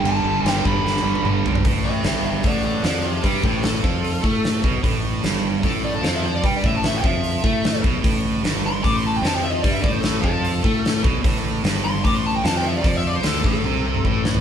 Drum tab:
CC |x---x-----------|----------------|----------------|----------------|
HH |----------------|o---o---o---o---|o---o---o---o---|o---o---o---o---|
SD |----o---oo------|----o-------o---|----o-------o---|----o-------o---|
T1 |-----------o----|----------------|----------------|----------------|
T2 |------------o---|----------------|----------------|----------------|
FT |--------------oo|----------------|----------------|----------------|
BD |------o---------|o-------o-------|o-o---o---o---o-|o-------o-------|

CC |----------------|----------------|----------------|----------------|
HH |o---o---o---o---|o---o---o---o---|o---o---o---o---|o---o---o---o---|
SD |----o-------o---|----o-------o---|----o-------o---|----o-------o---|
T1 |----------------|----------------|----------------|----------------|
T2 |----------------|----------------|----------------|----------------|
FT |----------------|----------------|----------------|----------------|
BD |o-o---o---o---o-|o-------o-------|o-o---o---o---o-|o-------o-------|

CC |----------------|
HH |o---o-----------|
SD |----o---------o-|
T1 |--------oo------|
T2 |-----------o----|
FT |---------------o|
BD |o-----o-----o---|